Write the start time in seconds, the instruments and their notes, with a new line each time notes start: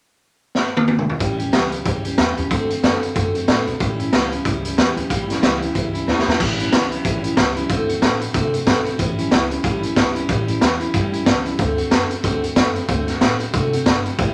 0.55 snare
0.77 high tom
0.88 high tom
0.99 mid tom
1.10 floor tom
1.19 upright bass A1, steel-string acoustic guitar A2 E3 G3 C#4 G4, kick, closed hi-hat
1.38 steel-string acoustic guitar G3 C#4 G4, closed hi-hat
1.52 upright bass C#2, steel-string acoustic guitar A2 E3 G3 C#4 G4, snare, closed hi-hat
1.71 steel-string acoustic guitar G3 C#4 G4, closed hi-hat
1.84 upright bass C#2, steel-string acoustic guitar E3 G3 C#4 G4, kick, closed hi-hat
2.04 steel-string acoustic guitar G3 C#4 G4, closed hi-hat
2.18 upright bass E2, steel-string acoustic guitar A2 E3 G3 C#4 G4, snare, closed hi-hat
2.36 upright bass E2, steel-string acoustic guitar G3 C#4 G4, closed hi-hat
2.50 upright bass D2, steel-string acoustic guitar D3 A3 C4 F#4, kick, closed hi-hat
2.69 steel-string acoustic guitar A3 C4 F#4, closed hi-hat
2.83 upright bass F#2, steel-string acoustic guitar D3 A3 C4 F#4, snare, closed hi-hat
3.02 steel-string acoustic guitar A3 C4 F#4, closed hi-hat
3.14 upright bass F#2, steel-string acoustic guitar D3 A3 C4 F#4, kick, closed hi-hat
3.34 steel-string acoustic guitar A3 C4 F#4, closed hi-hat
3.47 upright bass A2, steel-string acoustic guitar D3 A3 C4 F#4, snare, closed hi-hat
3.66 upright bass B1, steel-string acoustic guitar A3 C4 F#4, closed hi-hat
3.80 upright bass A1, steel-string acoustic guitar A2 E3 G3 C#4 E4, kick, closed hi-hat
3.99 steel-string acoustic guitar G3 C#4 E4, closed hi-hat
4.13 upright bass C#2, steel-string acoustic guitar A2 E3 G3 C#4 E4, snare, closed hi-hat
4.32 steel-string acoustic guitar G3 C#4 E4, closed hi-hat
4.45 upright bass C#2, steel-string acoustic guitar E3 G3 C#4 E4, kick, closed hi-hat
4.65 steel-string acoustic guitar G3 C#4 E4, closed hi-hat
4.77 upright bass E2, steel-string acoustic guitar A2 E3 G3 C#4 E4, snare, closed hi-hat
4.97 upright bass E2, steel-string acoustic guitar G3 C#4 E4, closed hi-hat
5.09 upright bass A1, steel-string acoustic guitar A2 E3 G3 C#4 E4, kick, closed hi-hat
5.29 steel-string acoustic guitar G3 C#4 E4, snare, closed hi-hat
5.42 upright bass C#2, steel-string acoustic guitar A2 E3 G3 C#4 E4, snare, closed hi-hat
5.61 steel-string acoustic guitar G3 C#4 E4, closed hi-hat
5.74 upright bass C#2, steel-string acoustic guitar E3 G3 C#4 E4, kick, closed hi-hat
5.93 steel-string acoustic guitar G3 C#4 E4, closed hi-hat
6.06 upright bass E2, steel-string acoustic guitar A2 E3 G3 C#4 E4, snare
6.19 snare
6.26 upright bass E2, steel-string acoustic guitar G3 C#4 E4, snare
6.40 upright bass A1, steel-string acoustic guitar A2 E3 G3 C#4 E4, kick, crash
6.58 steel-string acoustic guitar G3 C#4 E4, closed hi-hat
6.71 upright bass C#2, steel-string acoustic guitar E3 G3 E4, snare, closed hi-hat
6.91 steel-string acoustic guitar G3 C#4 E4, closed hi-hat
7.04 upright bass A1, steel-string acoustic guitar A2 E3 G3 C#4 E4, kick, closed hi-hat
7.23 steel-string acoustic guitar G3 C#4 E4, closed hi-hat
7.36 upright bass C#2, steel-string acoustic guitar E3 G3 C#4 E4, kick, snare, closed hi-hat
7.56 steel-string acoustic guitar G3 C#4 E4, closed hi-hat
7.70 upright bass D2, steel-string acoustic guitar D3 A3 C4 F#4, kick, closed hi-hat
7.89 steel-string acoustic guitar A3 C4 F#4, closed hi-hat
8.02 upright bass A2, steel-string acoustic guitar D3 C4 F#4, snare, closed hi-hat
8.20 steel-string acoustic guitar A3 C4 F#4, closed hi-hat
8.34 upright bass C3, steel-string acoustic guitar D3 A3 C4 F#4, kick, closed hi-hat
8.53 steel-string acoustic guitar A3 C4 F#4, closed hi-hat
8.66 upright bass B1, steel-string acoustic guitar D3 A3 C4 F#4, kick, snare, closed hi-hat
8.85 steel-string acoustic guitar A3 C4 F#4, closed hi-hat
8.98 upright bass A1, steel-string acoustic guitar A2 E3 G3 C#4 E4, kick, closed hi-hat
9.18 steel-string acoustic guitar G3 C#4 E4, closed hi-hat
9.31 upright bass C#2, steel-string acoustic guitar E3 G3 C#4 E4, snare, closed hi-hat
9.50 steel-string acoustic guitar G3 C#4 E4, closed hi-hat
9.63 upright bass A1, steel-string acoustic guitar A2 E3 G3 C#4 E4, kick, closed hi-hat
9.82 steel-string acoustic guitar G3 C#4 E4, closed hi-hat
9.95 upright bass C#2, steel-string acoustic guitar E3 G3 C#4 E4, kick, snare, closed hi-hat
10.14 steel-string acoustic guitar G3 C#4 E4, closed hi-hat
10.28 upright bass A1, steel-string acoustic guitar A2 E3 G3 C#4 E4, kick, closed hi-hat
10.47 steel-string acoustic guitar G3 C#4 E4, closed hi-hat
10.61 upright bass E2, steel-string acoustic guitar E3 G3 E4, snare, closed hi-hat
10.80 steel-string acoustic guitar G3 C#4 E4, closed hi-hat
10.94 upright bass G2, steel-string acoustic guitar A2 E3 G3 C#4 E4, kick, closed hi-hat
11.12 steel-string acoustic guitar G3 C#4 E4, closed hi-hat
11.25 upright bass C#2, steel-string acoustic guitar E3 G3 C#4 E4, kick, snare, closed hi-hat
11.45 steel-string acoustic guitar G3 C#4 E4, closed hi-hat
11.57 upright bass D2, steel-string acoustic guitar D3 A3 C4 F#4, kick, closed hi-hat
11.77 steel-string acoustic guitar A3 C4 F#4, closed hi-hat
11.90 upright bass F#2, steel-string acoustic guitar D3 A3 C4 F#4, snare, closed hi-hat
12.10 steel-string acoustic guitar A3 C4 F#4, closed hi-hat
12.23 upright bass D2, steel-string acoustic guitar D3 A3 C4 F#4, kick, closed hi-hat
12.42 steel-string acoustic guitar A3 C4 F#4, closed hi-hat
12.56 upright bass F#2, steel-string acoustic guitar D3 A3 C4 F#4, kick, snare, closed hi-hat
12.75 steel-string acoustic guitar A3 C4 F#4, closed hi-hat
12.88 upright bass D2, steel-string acoustic guitar D3 A3 C4 F#4, kick, closed hi-hat
13.07 steel-string acoustic guitar A3 C4 F#4, snare, closed hi-hat
13.20 upright bass A2, steel-string acoustic guitar D3 A3 C4 F#4, snare, closed hi-hat
13.40 steel-string acoustic guitar A3 C4 F#4, closed hi-hat
13.53 upright bass C3, steel-string acoustic guitar D3 A3 C4 F#4, kick, closed hi-hat
13.73 steel-string acoustic guitar A3 C4 F#4, closed hi-hat
13.86 upright bass G1, steel-string acoustic guitar D3 C4 F#4, kick, snare, closed hi-hat
14.05 steel-string acoustic guitar A3 C4 F#4, closed hi-hat
14.18 upright bass A1, steel-string acoustic guitar A2 E3 G3 C#4 E4, kick, closed hi-hat